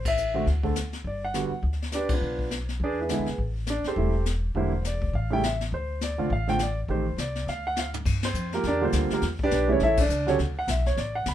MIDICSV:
0, 0, Header, 1, 5, 480
1, 0, Start_track
1, 0, Key_signature, -1, "minor"
1, 0, Tempo, 291971
1, 1720, Time_signature, 4, 2, 24, 8
1, 18648, End_track
2, 0, Start_track
2, 0, Title_t, "Grand piano"
2, 0, Program_c, 0, 0
2, 128, Note_on_c, 0, 76, 101
2, 564, Note_on_c, 0, 50, 61
2, 570, Note_on_c, 0, 57, 59
2, 577, Note_on_c, 0, 60, 57
2, 588, Note_on_c, 0, 66, 65
2, 736, Note_off_c, 0, 76, 0
2, 739, Note_off_c, 0, 50, 0
2, 742, Note_off_c, 0, 57, 0
2, 746, Note_off_c, 0, 60, 0
2, 751, Note_off_c, 0, 66, 0
2, 1042, Note_on_c, 0, 50, 63
2, 1044, Note_on_c, 0, 57, 52
2, 1056, Note_on_c, 0, 60, 52
2, 1058, Note_on_c, 0, 69, 61
2, 1219, Note_off_c, 0, 50, 0
2, 1220, Note_off_c, 0, 57, 0
2, 1226, Note_off_c, 0, 60, 0
2, 1227, Note_off_c, 0, 69, 0
2, 1764, Note_on_c, 0, 74, 66
2, 2019, Note_off_c, 0, 74, 0
2, 2047, Note_on_c, 0, 78, 82
2, 2207, Note_on_c, 0, 50, 61
2, 2212, Note_on_c, 0, 55, 53
2, 2215, Note_on_c, 0, 59, 57
2, 2224, Note_on_c, 0, 66, 69
2, 2460, Note_off_c, 0, 50, 0
2, 2463, Note_off_c, 0, 55, 0
2, 2465, Note_off_c, 0, 59, 0
2, 2469, Note_off_c, 0, 66, 0
2, 2656, Note_off_c, 0, 78, 0
2, 3191, Note_on_c, 0, 74, 83
2, 3197, Note_on_c, 0, 71, 65
2, 3202, Note_on_c, 0, 62, 60
2, 3208, Note_on_c, 0, 67, 57
2, 3453, Note_off_c, 0, 74, 0
2, 3456, Note_off_c, 0, 71, 0
2, 3458, Note_off_c, 0, 62, 0
2, 3462, Note_off_c, 0, 67, 0
2, 3496, Note_on_c, 0, 71, 66
2, 3499, Note_on_c, 0, 65, 54
2, 3502, Note_on_c, 0, 62, 51
2, 3503, Note_on_c, 0, 59, 54
2, 4101, Note_off_c, 0, 71, 0
2, 4102, Note_off_c, 0, 65, 0
2, 4104, Note_off_c, 0, 59, 0
2, 4104, Note_off_c, 0, 62, 0
2, 4662, Note_on_c, 0, 74, 85
2, 4663, Note_on_c, 0, 62, 73
2, 4664, Note_on_c, 0, 71, 62
2, 4668, Note_on_c, 0, 68, 66
2, 4909, Note_off_c, 0, 74, 0
2, 4910, Note_off_c, 0, 62, 0
2, 4910, Note_off_c, 0, 71, 0
2, 4912, Note_off_c, 0, 68, 0
2, 4938, Note_on_c, 0, 71, 59
2, 4942, Note_on_c, 0, 59, 48
2, 4943, Note_on_c, 0, 64, 49
2, 4945, Note_on_c, 0, 68, 49
2, 5090, Note_off_c, 0, 59, 0
2, 5097, Note_off_c, 0, 64, 0
2, 5099, Note_on_c, 0, 50, 62
2, 5103, Note_on_c, 0, 56, 60
2, 5115, Note_on_c, 0, 59, 58
2, 5121, Note_on_c, 0, 64, 65
2, 5347, Note_off_c, 0, 50, 0
2, 5349, Note_off_c, 0, 56, 0
2, 5355, Note_off_c, 0, 59, 0
2, 5358, Note_off_c, 0, 64, 0
2, 5541, Note_off_c, 0, 71, 0
2, 5545, Note_off_c, 0, 68, 0
2, 6082, Note_on_c, 0, 74, 77
2, 6083, Note_on_c, 0, 62, 65
2, 6339, Note_off_c, 0, 62, 0
2, 6339, Note_off_c, 0, 74, 0
2, 6364, Note_on_c, 0, 60, 61
2, 6369, Note_on_c, 0, 67, 64
2, 6371, Note_on_c, 0, 69, 59
2, 6372, Note_on_c, 0, 72, 75
2, 6520, Note_on_c, 0, 48, 54
2, 6523, Note_on_c, 0, 55, 50
2, 6533, Note_on_c, 0, 57, 52
2, 6533, Note_on_c, 0, 64, 59
2, 6777, Note_off_c, 0, 48, 0
2, 6778, Note_off_c, 0, 55, 0
2, 6783, Note_off_c, 0, 57, 0
2, 6784, Note_off_c, 0, 64, 0
2, 6974, Note_off_c, 0, 60, 0
2, 6976, Note_off_c, 0, 67, 0
2, 6977, Note_off_c, 0, 69, 0
2, 6978, Note_off_c, 0, 72, 0
2, 7488, Note_on_c, 0, 50, 66
2, 7490, Note_on_c, 0, 55, 58
2, 7499, Note_on_c, 0, 58, 59
2, 7504, Note_on_c, 0, 64, 72
2, 7511, Note_on_c, 0, 72, 62
2, 7741, Note_off_c, 0, 50, 0
2, 7742, Note_off_c, 0, 55, 0
2, 7746, Note_off_c, 0, 58, 0
2, 7749, Note_off_c, 0, 64, 0
2, 7943, Note_off_c, 0, 72, 0
2, 8004, Note_on_c, 0, 74, 68
2, 8430, Note_off_c, 0, 74, 0
2, 8471, Note_on_c, 0, 77, 72
2, 8722, Note_on_c, 0, 49, 66
2, 8729, Note_on_c, 0, 55, 62
2, 8732, Note_off_c, 0, 77, 0
2, 8735, Note_on_c, 0, 57, 60
2, 8743, Note_on_c, 0, 64, 68
2, 8766, Note_on_c, 0, 79, 96
2, 8898, Note_off_c, 0, 49, 0
2, 8902, Note_off_c, 0, 55, 0
2, 8905, Note_off_c, 0, 57, 0
2, 8909, Note_off_c, 0, 64, 0
2, 8935, Note_off_c, 0, 79, 0
2, 8954, Note_on_c, 0, 76, 72
2, 9214, Note_off_c, 0, 76, 0
2, 9435, Note_on_c, 0, 72, 73
2, 9865, Note_off_c, 0, 72, 0
2, 9919, Note_on_c, 0, 74, 73
2, 10164, Note_on_c, 0, 50, 63
2, 10167, Note_on_c, 0, 57, 57
2, 10177, Note_on_c, 0, 65, 78
2, 10179, Note_on_c, 0, 60, 61
2, 10339, Note_off_c, 0, 50, 0
2, 10341, Note_off_c, 0, 57, 0
2, 10346, Note_off_c, 0, 65, 0
2, 10347, Note_off_c, 0, 60, 0
2, 10347, Note_off_c, 0, 74, 0
2, 10400, Note_on_c, 0, 77, 83
2, 10646, Note_on_c, 0, 50, 62
2, 10650, Note_on_c, 0, 57, 58
2, 10657, Note_off_c, 0, 77, 0
2, 10661, Note_on_c, 0, 60, 64
2, 10669, Note_on_c, 0, 65, 72
2, 10678, Note_on_c, 0, 79, 106
2, 10820, Note_off_c, 0, 50, 0
2, 10822, Note_off_c, 0, 57, 0
2, 10828, Note_off_c, 0, 60, 0
2, 10832, Note_off_c, 0, 65, 0
2, 10851, Note_off_c, 0, 79, 0
2, 10893, Note_on_c, 0, 74, 74
2, 11144, Note_off_c, 0, 74, 0
2, 11323, Note_on_c, 0, 51, 56
2, 11330, Note_on_c, 0, 57, 48
2, 11336, Note_on_c, 0, 60, 49
2, 11339, Note_on_c, 0, 67, 61
2, 11352, Note_on_c, 0, 72, 67
2, 11578, Note_off_c, 0, 51, 0
2, 11581, Note_off_c, 0, 57, 0
2, 11584, Note_off_c, 0, 60, 0
2, 11586, Note_off_c, 0, 67, 0
2, 11783, Note_off_c, 0, 72, 0
2, 11835, Note_on_c, 0, 74, 75
2, 12264, Note_off_c, 0, 74, 0
2, 12313, Note_on_c, 0, 77, 82
2, 12573, Note_off_c, 0, 77, 0
2, 12607, Note_on_c, 0, 78, 94
2, 12775, Note_off_c, 0, 78, 0
2, 12807, Note_on_c, 0, 77, 82
2, 12964, Note_off_c, 0, 77, 0
2, 13561, Note_on_c, 0, 72, 81
2, 13562, Note_on_c, 0, 60, 57
2, 13990, Note_off_c, 0, 72, 0
2, 13991, Note_off_c, 0, 60, 0
2, 14038, Note_on_c, 0, 70, 75
2, 14050, Note_on_c, 0, 67, 62
2, 14052, Note_on_c, 0, 65, 57
2, 14056, Note_on_c, 0, 58, 59
2, 14210, Note_off_c, 0, 70, 0
2, 14216, Note_off_c, 0, 67, 0
2, 14217, Note_off_c, 0, 65, 0
2, 14219, Note_off_c, 0, 58, 0
2, 14257, Note_on_c, 0, 74, 88
2, 14267, Note_on_c, 0, 67, 68
2, 14272, Note_on_c, 0, 70, 68
2, 14276, Note_on_c, 0, 62, 74
2, 14487, Note_on_c, 0, 50, 63
2, 14493, Note_on_c, 0, 55, 61
2, 14502, Note_on_c, 0, 58, 60
2, 14504, Note_on_c, 0, 65, 73
2, 14505, Note_off_c, 0, 74, 0
2, 14511, Note_off_c, 0, 67, 0
2, 14513, Note_off_c, 0, 70, 0
2, 14515, Note_off_c, 0, 62, 0
2, 14544, Note_on_c, 0, 72, 74
2, 14546, Note_on_c, 0, 60, 65
2, 14962, Note_off_c, 0, 72, 0
2, 14963, Note_off_c, 0, 60, 0
2, 14991, Note_off_c, 0, 58, 0
2, 15000, Note_off_c, 0, 65, 0
2, 15013, Note_on_c, 0, 70, 76
2, 15015, Note_on_c, 0, 58, 67
2, 15017, Note_on_c, 0, 67, 64
2, 15025, Note_on_c, 0, 65, 58
2, 15121, Note_off_c, 0, 50, 0
2, 15124, Note_off_c, 0, 55, 0
2, 15178, Note_off_c, 0, 70, 0
2, 15179, Note_off_c, 0, 58, 0
2, 15180, Note_off_c, 0, 67, 0
2, 15184, Note_off_c, 0, 65, 0
2, 15511, Note_on_c, 0, 74, 101
2, 15514, Note_on_c, 0, 62, 83
2, 15515, Note_on_c, 0, 71, 84
2, 15516, Note_on_c, 0, 67, 83
2, 15909, Note_on_c, 0, 49, 64
2, 15917, Note_on_c, 0, 55, 59
2, 15919, Note_on_c, 0, 57, 60
2, 15926, Note_off_c, 0, 74, 0
2, 15928, Note_off_c, 0, 62, 0
2, 15928, Note_off_c, 0, 71, 0
2, 15929, Note_off_c, 0, 67, 0
2, 15929, Note_on_c, 0, 64, 71
2, 15979, Note_on_c, 0, 61, 62
2, 15985, Note_on_c, 0, 73, 81
2, 16091, Note_off_c, 0, 49, 0
2, 16096, Note_off_c, 0, 55, 0
2, 16096, Note_off_c, 0, 57, 0
2, 16101, Note_off_c, 0, 64, 0
2, 16141, Note_off_c, 0, 61, 0
2, 16144, Note_off_c, 0, 73, 0
2, 16164, Note_on_c, 0, 76, 101
2, 16170, Note_on_c, 0, 69, 72
2, 16173, Note_on_c, 0, 73, 75
2, 16179, Note_on_c, 0, 64, 74
2, 16418, Note_off_c, 0, 76, 0
2, 16422, Note_off_c, 0, 69, 0
2, 16423, Note_off_c, 0, 73, 0
2, 16426, Note_off_c, 0, 64, 0
2, 16447, Note_on_c, 0, 74, 88
2, 16452, Note_on_c, 0, 62, 68
2, 16873, Note_off_c, 0, 74, 0
2, 16876, Note_off_c, 0, 62, 0
2, 16878, Note_on_c, 0, 50, 64
2, 16891, Note_on_c, 0, 54, 59
2, 16895, Note_on_c, 0, 61, 60
2, 16895, Note_on_c, 0, 66, 68
2, 16919, Note_on_c, 0, 69, 71
2, 16919, Note_on_c, 0, 73, 89
2, 16921, Note_on_c, 0, 67, 70
2, 17025, Note_off_c, 0, 69, 0
2, 17025, Note_off_c, 0, 73, 0
2, 17027, Note_off_c, 0, 67, 0
2, 17056, Note_off_c, 0, 50, 0
2, 17062, Note_off_c, 0, 54, 0
2, 17064, Note_off_c, 0, 61, 0
2, 17064, Note_off_c, 0, 66, 0
2, 17403, Note_on_c, 0, 78, 88
2, 17573, Note_off_c, 0, 78, 0
2, 17593, Note_on_c, 0, 76, 71
2, 17853, Note_off_c, 0, 76, 0
2, 17866, Note_on_c, 0, 73, 79
2, 18044, Note_off_c, 0, 73, 0
2, 18057, Note_on_c, 0, 74, 78
2, 18325, Note_off_c, 0, 74, 0
2, 18338, Note_on_c, 0, 78, 86
2, 18520, Note_off_c, 0, 78, 0
2, 18551, Note_on_c, 0, 83, 84
2, 18648, Note_off_c, 0, 83, 0
2, 18648, End_track
3, 0, Start_track
3, 0, Title_t, "Upright bass"
3, 0, Program_c, 1, 32
3, 0, Note_on_c, 1, 33, 76
3, 708, Note_off_c, 1, 33, 0
3, 757, Note_on_c, 1, 38, 78
3, 1670, Note_off_c, 1, 38, 0
3, 1716, Note_on_c, 1, 31, 76
3, 2430, Note_off_c, 1, 31, 0
3, 2674, Note_on_c, 1, 38, 76
3, 3589, Note_off_c, 1, 38, 0
3, 3638, Note_on_c, 1, 35, 75
3, 4552, Note_off_c, 1, 35, 0
3, 4601, Note_on_c, 1, 40, 79
3, 5196, Note_off_c, 1, 40, 0
3, 5240, Note_on_c, 1, 38, 56
3, 5389, Note_off_c, 1, 38, 0
3, 5406, Note_on_c, 1, 35, 58
3, 5548, Note_off_c, 1, 35, 0
3, 5557, Note_on_c, 1, 33, 75
3, 6271, Note_off_c, 1, 33, 0
3, 6511, Note_on_c, 1, 28, 82
3, 7427, Note_off_c, 1, 28, 0
3, 7474, Note_on_c, 1, 28, 76
3, 8389, Note_off_c, 1, 28, 0
3, 8442, Note_on_c, 1, 33, 77
3, 9353, Note_off_c, 1, 33, 0
3, 9401, Note_on_c, 1, 38, 81
3, 10112, Note_off_c, 1, 38, 0
3, 10161, Note_on_c, 1, 36, 65
3, 10344, Note_off_c, 1, 36, 0
3, 10359, Note_on_c, 1, 33, 79
3, 11271, Note_off_c, 1, 33, 0
3, 11318, Note_on_c, 1, 33, 77
3, 11764, Note_off_c, 1, 33, 0
3, 11778, Note_on_c, 1, 36, 72
3, 12234, Note_off_c, 1, 36, 0
3, 12272, Note_on_c, 1, 38, 75
3, 13187, Note_off_c, 1, 38, 0
3, 13244, Note_on_c, 1, 43, 80
3, 13693, Note_off_c, 1, 43, 0
3, 13703, Note_on_c, 1, 41, 85
3, 14176, Note_off_c, 1, 41, 0
3, 14197, Note_on_c, 1, 40, 78
3, 14663, Note_off_c, 1, 40, 0
3, 14675, Note_on_c, 1, 38, 83
3, 14942, Note_off_c, 1, 38, 0
3, 15151, Note_on_c, 1, 40, 77
3, 15620, Note_off_c, 1, 40, 0
3, 15631, Note_on_c, 1, 35, 81
3, 16100, Note_off_c, 1, 35, 0
3, 16111, Note_on_c, 1, 33, 86
3, 16574, Note_off_c, 1, 33, 0
3, 16584, Note_on_c, 1, 37, 84
3, 17056, Note_off_c, 1, 37, 0
3, 17077, Note_on_c, 1, 38, 80
3, 17540, Note_off_c, 1, 38, 0
3, 17550, Note_on_c, 1, 35, 83
3, 18019, Note_off_c, 1, 35, 0
3, 18027, Note_on_c, 1, 33, 77
3, 18498, Note_off_c, 1, 33, 0
3, 18511, Note_on_c, 1, 37, 84
3, 18648, Note_off_c, 1, 37, 0
3, 18648, End_track
4, 0, Start_track
4, 0, Title_t, "Muted upright bass strokes"
4, 2480, Note_on_c, 9, 29, 36
4, 2645, Note_off_c, 9, 29, 0
4, 6324, Note_on_c, 9, 29, 34
4, 6489, Note_off_c, 9, 29, 0
4, 14966, Note_on_c, 9, 29, 35
4, 15130, Note_off_c, 9, 29, 0
4, 18648, End_track
5, 0, Start_track
5, 0, Title_t, "Drums"
5, 87, Note_on_c, 9, 36, 70
5, 88, Note_on_c, 9, 51, 71
5, 251, Note_off_c, 9, 36, 0
5, 252, Note_off_c, 9, 51, 0
5, 286, Note_on_c, 9, 44, 49
5, 450, Note_off_c, 9, 44, 0
5, 760, Note_on_c, 9, 36, 30
5, 771, Note_on_c, 9, 25, 36
5, 771, Note_on_c, 9, 38, 34
5, 924, Note_off_c, 9, 36, 0
5, 935, Note_off_c, 9, 38, 0
5, 1043, Note_on_c, 9, 36, 49
5, 1208, Note_off_c, 9, 36, 0
5, 1243, Note_on_c, 9, 38, 57
5, 1243, Note_on_c, 9, 44, 58
5, 1408, Note_off_c, 9, 38, 0
5, 1408, Note_off_c, 9, 44, 0
5, 1524, Note_on_c, 9, 38, 35
5, 1688, Note_off_c, 9, 38, 0
5, 1716, Note_on_c, 9, 36, 32
5, 1721, Note_off_c, 9, 25, 0
5, 1721, Note_on_c, 9, 25, 41
5, 1881, Note_off_c, 9, 36, 0
5, 2200, Note_on_c, 9, 38, 55
5, 2200, Note_on_c, 9, 44, 54
5, 2365, Note_off_c, 9, 38, 0
5, 2365, Note_off_c, 9, 44, 0
5, 2676, Note_on_c, 9, 36, 30
5, 2683, Note_off_c, 9, 25, 0
5, 2683, Note_on_c, 9, 25, 39
5, 2838, Note_on_c, 9, 38, 28
5, 2841, Note_off_c, 9, 36, 0
5, 2994, Note_off_c, 9, 38, 0
5, 2994, Note_on_c, 9, 38, 38
5, 3154, Note_off_c, 9, 38, 0
5, 3154, Note_on_c, 9, 38, 57
5, 3154, Note_on_c, 9, 44, 49
5, 3318, Note_off_c, 9, 38, 0
5, 3318, Note_off_c, 9, 44, 0
5, 3433, Note_on_c, 9, 51, 69
5, 3440, Note_on_c, 9, 36, 78
5, 3598, Note_off_c, 9, 51, 0
5, 3604, Note_off_c, 9, 36, 0
5, 3642, Note_off_c, 9, 25, 0
5, 3642, Note_on_c, 9, 25, 45
5, 3925, Note_on_c, 9, 36, 42
5, 4089, Note_off_c, 9, 36, 0
5, 4124, Note_on_c, 9, 38, 54
5, 4124, Note_on_c, 9, 44, 51
5, 4288, Note_off_c, 9, 38, 0
5, 4288, Note_off_c, 9, 44, 0
5, 4413, Note_on_c, 9, 38, 37
5, 4578, Note_off_c, 9, 38, 0
5, 4602, Note_on_c, 9, 36, 29
5, 4606, Note_off_c, 9, 25, 0
5, 4606, Note_on_c, 9, 25, 37
5, 4767, Note_off_c, 9, 36, 0
5, 5078, Note_on_c, 9, 38, 59
5, 5078, Note_on_c, 9, 44, 64
5, 5243, Note_off_c, 9, 38, 0
5, 5243, Note_off_c, 9, 44, 0
5, 5361, Note_on_c, 9, 38, 33
5, 5526, Note_off_c, 9, 38, 0
5, 5558, Note_off_c, 9, 25, 0
5, 5558, Note_on_c, 9, 25, 46
5, 5559, Note_on_c, 9, 36, 29
5, 5723, Note_off_c, 9, 36, 0
5, 6026, Note_on_c, 9, 38, 58
5, 6026, Note_on_c, 9, 44, 60
5, 6191, Note_off_c, 9, 38, 0
5, 6191, Note_off_c, 9, 44, 0
5, 6312, Note_on_c, 9, 38, 34
5, 6477, Note_off_c, 9, 38, 0
5, 6514, Note_off_c, 9, 25, 0
5, 6514, Note_on_c, 9, 25, 46
5, 6515, Note_on_c, 9, 36, 29
5, 6679, Note_off_c, 9, 36, 0
5, 6999, Note_on_c, 9, 38, 59
5, 6999, Note_on_c, 9, 44, 60
5, 7164, Note_off_c, 9, 38, 0
5, 7164, Note_off_c, 9, 44, 0
5, 7478, Note_on_c, 9, 36, 29
5, 7479, Note_off_c, 9, 25, 0
5, 7479, Note_on_c, 9, 25, 52
5, 7643, Note_off_c, 9, 36, 0
5, 7967, Note_on_c, 9, 38, 55
5, 7967, Note_on_c, 9, 44, 58
5, 8131, Note_off_c, 9, 38, 0
5, 8131, Note_off_c, 9, 44, 0
5, 8248, Note_on_c, 9, 36, 53
5, 8412, Note_off_c, 9, 36, 0
5, 8441, Note_on_c, 9, 36, 28
5, 8443, Note_off_c, 9, 25, 0
5, 8443, Note_on_c, 9, 25, 41
5, 8605, Note_off_c, 9, 36, 0
5, 8932, Note_on_c, 9, 38, 63
5, 8932, Note_on_c, 9, 44, 56
5, 9096, Note_off_c, 9, 38, 0
5, 9096, Note_off_c, 9, 44, 0
5, 9218, Note_on_c, 9, 38, 52
5, 9382, Note_off_c, 9, 38, 0
5, 9404, Note_on_c, 9, 36, 29
5, 9411, Note_off_c, 9, 25, 0
5, 9411, Note_on_c, 9, 25, 44
5, 9569, Note_off_c, 9, 36, 0
5, 9882, Note_on_c, 9, 38, 55
5, 9882, Note_on_c, 9, 44, 50
5, 10046, Note_off_c, 9, 38, 0
5, 10046, Note_off_c, 9, 44, 0
5, 10359, Note_on_c, 9, 36, 31
5, 10362, Note_off_c, 9, 25, 0
5, 10362, Note_on_c, 9, 25, 40
5, 10523, Note_off_c, 9, 36, 0
5, 10651, Note_on_c, 9, 38, 32
5, 10815, Note_off_c, 9, 38, 0
5, 10834, Note_on_c, 9, 38, 60
5, 10834, Note_on_c, 9, 44, 57
5, 10998, Note_off_c, 9, 38, 0
5, 10998, Note_off_c, 9, 44, 0
5, 11318, Note_on_c, 9, 36, 32
5, 11323, Note_off_c, 9, 25, 0
5, 11323, Note_on_c, 9, 25, 48
5, 11482, Note_off_c, 9, 36, 0
5, 11804, Note_on_c, 9, 38, 55
5, 11804, Note_on_c, 9, 44, 58
5, 11968, Note_off_c, 9, 38, 0
5, 11968, Note_off_c, 9, 44, 0
5, 12090, Note_on_c, 9, 38, 39
5, 12254, Note_off_c, 9, 38, 0
5, 12293, Note_on_c, 9, 38, 36
5, 12458, Note_off_c, 9, 38, 0
5, 12765, Note_on_c, 9, 38, 70
5, 12765, Note_on_c, 9, 44, 55
5, 12929, Note_off_c, 9, 38, 0
5, 12929, Note_off_c, 9, 44, 0
5, 13051, Note_on_c, 9, 43, 66
5, 13215, Note_off_c, 9, 43, 0
5, 13242, Note_on_c, 9, 36, 66
5, 13248, Note_off_c, 9, 25, 0
5, 13248, Note_on_c, 9, 25, 46
5, 13248, Note_on_c, 9, 38, 42
5, 13248, Note_on_c, 9, 49, 75
5, 13407, Note_off_c, 9, 36, 0
5, 13412, Note_off_c, 9, 38, 0
5, 13412, Note_off_c, 9, 49, 0
5, 13526, Note_on_c, 9, 38, 75
5, 13526, Note_on_c, 9, 51, 64
5, 13690, Note_off_c, 9, 38, 0
5, 13690, Note_off_c, 9, 51, 0
5, 13720, Note_on_c, 9, 44, 51
5, 13884, Note_off_c, 9, 44, 0
5, 14010, Note_on_c, 9, 38, 40
5, 14175, Note_off_c, 9, 38, 0
5, 14194, Note_off_c, 9, 25, 0
5, 14194, Note_on_c, 9, 25, 43
5, 14194, Note_on_c, 9, 38, 43
5, 14197, Note_on_c, 9, 36, 20
5, 14358, Note_off_c, 9, 38, 0
5, 14362, Note_off_c, 9, 36, 0
5, 14670, Note_on_c, 9, 38, 60
5, 14670, Note_on_c, 9, 44, 56
5, 14677, Note_on_c, 9, 36, 20
5, 14835, Note_off_c, 9, 38, 0
5, 14835, Note_off_c, 9, 44, 0
5, 14841, Note_off_c, 9, 36, 0
5, 14960, Note_on_c, 9, 38, 40
5, 15124, Note_off_c, 9, 38, 0
5, 15149, Note_off_c, 9, 25, 0
5, 15149, Note_on_c, 9, 25, 43
5, 15149, Note_on_c, 9, 38, 44
5, 15155, Note_on_c, 9, 36, 19
5, 15313, Note_off_c, 9, 38, 0
5, 15320, Note_off_c, 9, 36, 0
5, 15440, Note_on_c, 9, 36, 54
5, 15604, Note_off_c, 9, 36, 0
5, 15633, Note_on_c, 9, 38, 59
5, 15633, Note_on_c, 9, 44, 51
5, 15634, Note_on_c, 9, 36, 26
5, 15798, Note_off_c, 9, 36, 0
5, 15798, Note_off_c, 9, 38, 0
5, 15798, Note_off_c, 9, 44, 0
5, 16106, Note_off_c, 9, 25, 0
5, 16106, Note_on_c, 9, 25, 45
5, 16106, Note_on_c, 9, 38, 41
5, 16111, Note_on_c, 9, 36, 24
5, 16270, Note_off_c, 9, 38, 0
5, 16275, Note_off_c, 9, 36, 0
5, 16397, Note_on_c, 9, 49, 74
5, 16399, Note_on_c, 9, 36, 83
5, 16561, Note_off_c, 9, 49, 0
5, 16563, Note_off_c, 9, 36, 0
5, 16601, Note_on_c, 9, 44, 60
5, 16766, Note_off_c, 9, 44, 0
5, 16893, Note_on_c, 9, 38, 41
5, 17057, Note_off_c, 9, 38, 0
5, 17076, Note_on_c, 9, 36, 20
5, 17077, Note_off_c, 9, 25, 0
5, 17077, Note_on_c, 9, 25, 45
5, 17077, Note_on_c, 9, 38, 44
5, 17240, Note_off_c, 9, 36, 0
5, 17241, Note_off_c, 9, 38, 0
5, 17553, Note_on_c, 9, 38, 62
5, 17553, Note_on_c, 9, 44, 60
5, 17555, Note_on_c, 9, 36, 17
5, 17717, Note_off_c, 9, 38, 0
5, 17717, Note_off_c, 9, 44, 0
5, 17719, Note_off_c, 9, 36, 0
5, 17852, Note_on_c, 9, 38, 37
5, 18016, Note_off_c, 9, 38, 0
5, 18034, Note_on_c, 9, 36, 17
5, 18035, Note_off_c, 9, 25, 0
5, 18035, Note_on_c, 9, 25, 39
5, 18035, Note_on_c, 9, 38, 43
5, 18198, Note_off_c, 9, 36, 0
5, 18200, Note_off_c, 9, 38, 0
5, 18506, Note_on_c, 9, 38, 64
5, 18506, Note_on_c, 9, 44, 48
5, 18509, Note_on_c, 9, 36, 28
5, 18648, Note_off_c, 9, 25, 0
5, 18648, Note_off_c, 9, 36, 0
5, 18648, Note_off_c, 9, 38, 0
5, 18648, Note_off_c, 9, 44, 0
5, 18648, End_track
0, 0, End_of_file